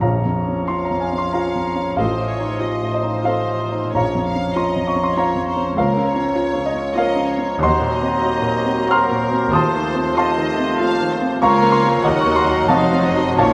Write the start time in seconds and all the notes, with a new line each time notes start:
0.01 A#1 A#2 F3 C#4 F4 C#5 F5 A#5
0.25 F2
0.48 C#4
0.68 C#4 F4 F5 C6
0.85 A#5
0.91 F2
1.00 G#5
1.13 C#4
1.18 C6
1.33 F3 C#4 F4 C#5 F5 A#5
1.55 F2
1.75 C#4
1.96 A1 A2 F3 C4 F4 A4 C5 D#5 F5 C6
2.18 A2
2.29 C#5
2.39 D#4
2.60 C4 F4 D#5
2.82 A2
2.91 C5 D#5
3.03 D#4
3.23 F3 C4 F4 A4 C5 D#5 F5 C6
3.47 A2
3.71 D#4
3.92 A#1 A#2 F3 C#4 F4 C#5 A#5
3.96 C#5 F5
4.15 F2
4.26 F5
4.35 C#4
4.55 A#3 F4 C#5 D#5 C6
4.76 F2
4.87 C#6
4.96 C#4
5.04 C6
5.15 F3 A#3 F4 C#5 F5 A#5
5.35 F2
5.48 C5
5.56 C#4
5.77 C#2 F3 A#3 F4 A#4 C#5 F5 A#5
5.97 C#3
6.07 C#5
6.16 C#4
6.35 A#3 F4 C#5
6.52 C#3 C#5
6.66 D#5
6.74 C#4
6.95 F3 A#3 F4 A#4 C#5 D#5 F5 A#5
7.16 C#3
7.27 C#5
7.38 C#4
7.59 D#2 F#3 A#3 F#4 C5 A#5
7.63 C5 D#5 F#5 C6
7.81 A#2
7.93 D#5
8.02 C4
8.21 A#3 F#4 C5
8.42 A#2
8.65 C4
8.88 A#3 F#4 A#4 C5 A#5 C6 F6
9.11 A#2
9.31 C4
9.51 D#2 F3 A3 F4 C5 A5 D#6
9.55 A5 C6
9.74 D#3
9.95 C4
10.16 F3 A3 F4 C5 D#5 F5 A5 C6
10.37 D#3
10.58 C4
10.79 A3 F4 F5
11.00 D#3
11.12 C5
11.21 C4
11.41 C#2 F3 A#3 F4 A#4 C#5 F5 A#5 C#6
11.58 A#5
11.62 A#3
11.72 C6
11.84 F4
12.03 D#2 F#3 A#3 D#4 F#4 A#4 D#5 F#5 A#5
12.20 C#6
12.26 A#3
12.36 C6
12.46 D#4 F#4
12.53 A#5
12.68 F1 F2 F#3 D#4 F#4 C5 D#5 F5 F#5 A5 C6
12.92 C4
13.05 D#5
13.15 D#4 F#4
13.37 A#1 A#2 F3 C#4 F4 C#5 F5 A5 C#6